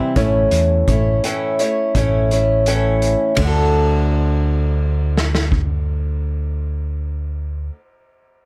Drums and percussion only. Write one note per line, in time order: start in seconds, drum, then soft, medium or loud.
0.16 kick medium
0.16 closed hi-hat medium
0.51 closed hi-hat medium
0.88 kick medium
0.88 closed hi-hat medium
1.24 closed hi-hat medium
1.59 closed hi-hat medium
1.95 kick medium
1.95 closed hi-hat medium
2.31 closed hi-hat medium
2.66 closed hi-hat medium
3.02 closed hi-hat medium
3.37 kick medium
3.37 ride medium
5.17 snare medium
5.35 snare medium
5.52 kick medium